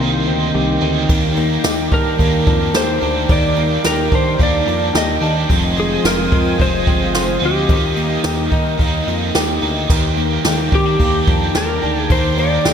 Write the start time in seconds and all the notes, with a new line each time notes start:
Already playing: C3 D#3 C4 G4 A#4 G5 C6
0.00 C2 C3 G3 A#3 D#4
0.27 D2 C4
0.55 C2 G4
0.81 D2 A#3 C4 D#4
0.85 G3
1.07 D#2 D#3 G3 D6, kick, ride
1.12 A#3 D4
1.36 A#3, ride
1.64 D#2 G4, snare, ride, tambourine
1.92 D#3 D4 A#4, kick, ride
2.18 D#2 D#3 G3 A#3, kick, ride
2.23 D4
2.47 F2 D4, kick, ride
2.74 D#2 G4 C5, snare, ride, tambourine
3.01 D2 A#3 D4, ride
3.05 G3
3.27 D#2 D#3 G3, kick, ride
3.32 A#3 D4 D5
3.56 A#3, ride
3.84 D#2 G4 A#4, snare, ride, tambourine
4.12 D#3 D4 C5, kick, ride
4.38 D#2 D#3 G3 A#3, kick, ride
4.43 D4 D5
4.66 F2 D4, ride
4.94 D#2 G4 D#5, snare, ride, tambourine
5.21 D#2 A#3 D4, ride
5.25 G3
5.47 F1 F2 C3 D#3 F4 C5 G#5 D#6, kick, ride
5.53 G#3 D#4
5.77 G#3 G#4, ride
6.04 F1 F4 A#4, snare, ride, tambourine
6.32 F2 C4, kick, ride
6.57 F1 C3 D#3 G#3, kick, ride
6.62 D#4 C5
6.87 G1 C4, kick, ride
7.14 F1 F4, snare, ride, tambourine
7.39 D2 G#3 C4 D#4, ride
7.44 D#3 G4
7.66 D#2 D#3 G3 D#4 A#4 G5, kick, ride
7.72 A#3 D#4
7.96 A#3, ride
8.24 D#2 G4, snare, ride, tambourine
8.52 D#3 D#4, kick, ride
8.77 D#2 D#3 G3 A#3, kick, ride
8.82 D#4
9.07 F2 D#4, ride
9.35 D#2 G4, snare, ride, tambourine
9.61 D2 A#3 D#4, ride
9.66 G3
9.87 D#2 D#3 G3 A#4 G5 D6, kick, crash
9.92 A#3 D4 G4
10.17 A#3, ride
10.45 D#2 G4, snare, ride, tambourine
10.72 D#3 C4 G4, kick, ride
10.86 D4
10.99 D#2 G3 A#3 D4, kick, ride
11.04 G4
11.27 F2 D4, kick, ride
11.55 D#2 G4 A#4, snare, ride, tambourine
11.82 D2 D4 G4, ride
11.87 A#3
12.01 G#4
12.09 D#2 D#3 G3 C5, kick, ride
12.13 A#3 D4 G4
12.37 A#3 D5, ride
12.65 D#2 G4, snare, ride, tambourine